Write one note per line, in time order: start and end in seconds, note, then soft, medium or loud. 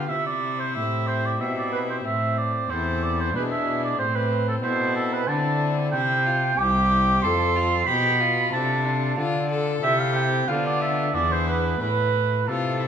0.00 0.11 F5 medium
0.10 0.71 C3 soft
0.10 0.78 C3 medium
0.10 1.37 E4 medium
0.10 0.26 E5 medium
0.26 0.61 D5 medium
0.60 0.74 C5 medium
0.75 1.36 A2 soft
0.75 1.43 A2 medium
0.75 1.36 C4 soft
0.75 1.36 E4 soft
0.75 1.37 G4 soft
0.75 1.09 E5 medium
1.07 1.27 C5 medium
1.26 1.42 D5 medium
1.40 2.01 B2 medium
1.40 2.05 B2 medium
1.40 2.00 C4 soft
1.40 2.01 E4 soft
1.40 2.07 E4 medium
1.40 2.01 G4 soft
1.40 1.56 E5 medium
1.57 1.72 D5 medium
1.72 1.80 B4 medium
1.90 1.97 C5 medium
2.05 2.65 A2 soft
2.05 2.68 A2 medium
2.05 2.71 C4 medium
2.05 2.39 E5 medium
2.38 2.72 D5 medium
2.70 3.30 E2 soft
2.70 3.36 E2 medium
2.70 3.30 C4 soft
2.70 3.34 E4 medium
2.70 3.31 E4 soft
2.70 3.31 A4 soft
2.70 3.04 C5 medium
3.03 3.22 D5 medium
3.20 3.35 C5 medium
3.35 3.99 B2 medium
3.35 3.95 B2 medium
3.35 4.00 D4 medium
3.35 3.95 D4 soft
3.35 3.95 E4 soft
3.35 3.95 G#4 soft
3.35 3.43 B4 medium
3.51 3.82 E5 medium
3.84 3.98 D5 medium
3.98 4.59 A2 medium
3.98 4.62 A2 medium
3.98 4.65 C4 medium
3.98 4.17 C5 medium
4.16 4.47 B4 medium
4.48 4.55 A4 medium
4.63 5.27 B2 medium
4.63 5.25 B2 medium
4.63 5.25 C4 soft
4.63 5.28 E4 medium
4.63 5.25 E4 soft
4.63 5.25 A4 soft
4.63 4.95 C5 medium
4.95 5.14 A4 medium
5.13 5.30 B4 medium
5.28 5.95 D3 medium
5.28 5.89 D3 medium
5.28 5.90 C4 soft
5.28 5.92 D4 medium
5.28 5.90 E4 soft
5.28 5.90 A4 medium
5.28 5.70 A5 loud
5.92 6.59 C3 medium
5.92 6.55 C3 medium
5.92 6.28 E4 medium
5.92 6.60 G5 loud
6.26 6.59 F4 medium
6.59 7.20 C2 medium
6.59 7.25 C2 medium
6.59 7.20 C4 soft
6.59 7.20 E4 soft
6.59 7.25 G4 medium
6.59 7.20 G4 medium
6.59 7.24 D6 loud
7.22 7.88 F2 medium
7.22 7.84 F2 medium
7.22 7.84 C4 soft
7.22 7.84 F4 medium
7.22 7.57 A4 medium
7.22 7.85 A4 medium
7.22 7.88 C6 medium
7.56 7.86 F4 medium
7.86 8.49 B2 medium
7.86 8.52 B2 medium
7.86 8.22 G4 medium
7.86 8.52 B5 loud
8.20 8.55 F4 medium
8.52 9.14 C3 medium
8.52 9.19 C3 medium
8.52 9.14 D4 soft
8.52 8.87 E4 medium
8.52 9.14 F4 soft
8.52 9.14 A4 medium
8.52 9.16 A5 medium
8.85 9.18 D4 medium
9.17 9.78 D3 medium
9.17 9.82 D3 medium
9.17 9.79 D4 medium
9.17 9.79 F4 medium
9.17 9.50 F4 medium
9.17 9.79 A4 medium
9.51 9.85 A4 medium
9.83 10.44 C3 medium
9.83 10.47 C3 medium
9.83 10.44 C4 soft
9.83 10.44 E4 soft
9.83 10.49 G4 medium
9.83 10.44 A4 soft
9.83 10.01 E5 loud
10.00 10.14 F5 medium
10.15 10.50 G5 loud
10.48 11.10 D3 medium
10.48 11.16 D3 medium
10.48 11.10 B3 soft
10.48 11.10 D4 soft
10.48 11.13 F4 medium
10.48 11.10 A4 soft
10.48 10.64 F5 medium
10.65 10.83 D5 medium
10.81 11.16 E5 medium
11.14 11.77 E2 medium
11.14 11.80 E2 medium
11.14 11.77 B3 soft
11.14 11.77 D4 soft
11.14 11.79 E4 medium
11.14 11.77 G#4 soft
11.14 11.33 D5 medium
11.32 11.48 C5 medium
11.48 11.81 B4 medium
11.80 12.44 A2 soft
11.80 12.50 A2 medium
11.80 12.40 E4 medium
11.80 12.49 B4 medium
12.47 12.88 C3 soft
12.47 12.88 C3 medium
12.47 12.88 C4 soft
12.47 12.88 E4 soft
12.47 12.81 F4 medium
12.47 12.88 A4 medium
12.47 12.88 A4 soft
12.79 12.88 E4 medium